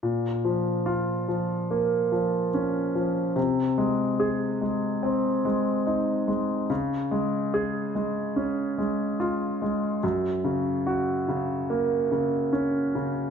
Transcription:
\new Staff \with { instrumentName = "Grand piano" } { \clef bass \time 4/4 \key bes \minor \tempo 4 = 72 bes,8 f8 f'8 f8 bes8 f8 des'8 f8 | c8 aes8 aes'8 aes8 c'8 aes8 ees'8 aes8 | des8 aes8 aes'8 aes8 des'8 aes8 f'8 aes8 | ges,8 des8 ges'8 des8 bes8 des8 des'8 des8 | }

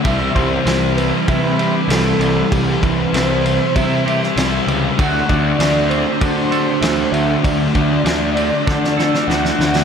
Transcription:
<<
  \new Staff \with { instrumentName = "Soft synth lead" } { \time 4/4 \key d \mixolydian \tempo 4 = 98 e''8 c''4 b'8 b'4 a'4 | g'8 b'8 c''4 e''4. r8 | fis''8 d''4 c''8 c''4. e''8 | d''2. fis''4 | }
  \new Staff \with { instrumentName = "Clean electric guitar" } { \time 4/4 \key d \mixolydian g4 e'4 e'8 g'8 e'8 g8 | g4 e'4 e'8 g'8 e'8 g8 | fis4 d'8 c'8 d'8 a'8 d'8 fis8 | fis4 d'8 c'8 d'8 a'8 d'8 fis8 | }
  \new Staff \with { instrumentName = "Distorted electric guitar" } { \time 4/4 \key d \mixolydian <c g c'>8 <g c'>8 <c g c'>8 <g c'>4 <g c'>8 <c g c'>4 | <c g c'>8 <g c'>8 <c g c'>8 <g c'>4 <g c'>8 <c g c'>4 | <d a d'>8 <a d'>8 <d a d'>8 <a d'>4 <a d'>8 <d a d'>4 | <d a d'>8 <a d'>8 <d a d'>8 <a d'>4 <a d'>8 <d a d'>4 | }
  \new Staff \with { instrumentName = "Overdriven electric guitar" } { \time 4/4 \key d \mixolydian <c e g c' e'>1~ | <c e g c' e'>1 | <d a c' fis'>1~ | <d a c' fis'>1 | }
  \new Staff \with { instrumentName = "Picked electric bass" } { \clef bass \time 4/4 \key d \mixolydian c,8 c,8 c,4 c4 c,8 c,8 | c,8 c,8 c,4 c4 c,8 cis,8 | d,8 d,8 d,4 d4 d,8 d,8 | d,8 d,8 d,4 d4 d,8 d,8 | }
  \new DrumStaff \with { instrumentName = "Drums" } \drummode { \time 4/4 <bd cymr>8 <bd cymr>8 <cymr sn>8 cymr8 <bd cymr>8 cymr8 <cymr sn>8 cymr8 | <bd cymr>8 <bd cymr>8 <cymr sn>8 cymr8 <bd cymr>8 cymr16 sn16 <cymr sn>8 cymr8 | <bd cymr>8 <bd cymr>8 <cymr sn>8 cymr8 <bd cymr>8 cymr8 <cymr sn>8 cymr8 | <bd cymr>8 <bd cymr>8 <cymr sn>8 cymr8 <bd sn>16 sn16 sn16 sn16 sn16 sn16 sn16 sn16 | }
>>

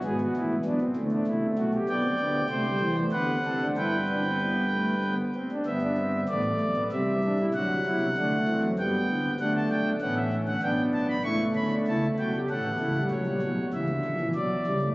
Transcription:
<<
  \new Staff \with { instrumentName = "Pipe organ" } { \time 3/4 \key g \major \tempo 4 = 96 << { r2. | g''2 fis''4 | g''2~ g''8 r8 | e''4 d''4 e''4 |
fis''2 g''4 | fis''16 a''16 g''8 fis''16 e''8 fis''16 g''8 a''16 b''16 | cis'''8 b''8 a''8 g''8 fis''4 | cis''4 e''4 d''4 | } \\ { gis'16 fis'16 e'8 d'16 c'8 d'16 e'8 fis'16 g'16 | d''4 c''4 b'8 a'8 | b'2~ b'8 r8 | r16 d'16 c'8 b16 a8 b16 c'8 d'16 e'16 |
fis'8 e'8 d'8 c'8 b4 | a4 b8 cis'8 d'4 | e'8 cis'16 d'16 e'8 fis'16 g'16 a'8 e'8 | r2. | } >> }
  \new Staff \with { instrumentName = "Pipe organ" } { \clef bass \time 3/4 \key g \major << { b4 b8 a4. | b16 c'16 b8 a16 g8 a16 b8 c'16 d'16 | e'8 d'16 c'16 b8 a8 b8 c'16 d'16 | b4 a4 g4 |
fis4 a4 r4 | d'4 cis'4 b4 | a2 cis'16 b16 a16 g16 | fis16 g16 fis8 e16 d8 e16 fis8 g16 a16 | } \\ { <gis,, gis,>8 <a,, a,>8 <b,, b,>8 <d, d>8 <c, c>8 <b,, b,>8 | <b,, b,>8 <d, d>8 <c, c>8 <e, e>8 <d, d>8 <c, c>8 | <g,, g,>2~ <g,, g,>8 r8 | <g,, g,>4 <a,, a,>8 <b,, b,>8 <c, c>4 |
<d, d>8 <b,, b,>16 <c, c>16 <d, d>8 <e, e>16 <fis, fis>16 <g, g>8 <d, d>8 | <d, d>8 <b,, b,>8 <a,, a,>4 <b,, b,>4 | <cis, cis>8 <d, d>8 <cis, cis>8 <b,, b,>8 <a,, a,>8 <cis, cis>8 | <ais,, ais,>8 <b,, b,>8 <cis, cis>8 <ais,, ais,>8 <b,, b,>8 <cis, cis>8 | } >> }
>>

